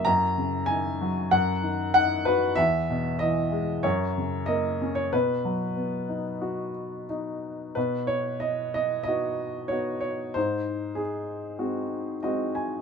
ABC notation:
X:1
M:4/4
L:1/16
Q:1/4=94
K:B
V:1 name="Upright piano"
a4 g4 f4 f2 B2 | e4 d4 c4 d3 c | B12 z4 | B2 c2 d2 d2 d4 c2 c2 |
^B4 G8 d2 g2 |]
V:2 name="Upright piano"
F,,2 C,2 D,2 F,2 F,,2 D,2 D2 F2 | E,,2 B,,2 E,2 G,2 F,,2 C,2 A,2 C2 | B,,2 F,2 B,2 D2 F4 D4 | B,,8 [B,DF]4 [B,DF]4 |
G,,8 [G,^B,F]4 [G,B,F]4 |]